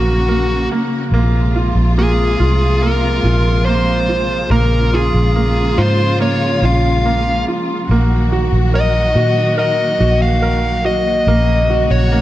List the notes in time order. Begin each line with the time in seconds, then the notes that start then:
Already playing: A#1 C#3 F#3 A#3 F#4
0.28 A#3
0.72 A#3
1.12 A#1 C3 F3 G#3 A#3 F4
1.56 F4
1.75 A#1
1.98 A#3 G#4
2.40 C2 F4
2.82 A#3 A#4
3.24 A#1 F4
3.66 A#3 C5
4.09 F4
4.50 A#1 C#3 A#3 F4 A#4
4.93 F4 G#4
5.14 A#1
5.36 A#3
5.78 G#2 F4 C5
6.20 A#3 C#5
6.62 A#1 F4 F5
7.05 A#3
7.48 F4
7.89 A#1 D#3 F#3 A#3 F#4
8.32 F#4
8.52 A#1
8.74 A#4 D#5
9.15 A#2 F#4
9.58 A#4 D#5
10.00 A#1 F#4
10.22 F5
10.42 A#4
10.85 F#4 D#5
11.26 A#1 C#3 A#3 F#4
11.70 F#4
11.90 A#1 C#5
12.12 A#3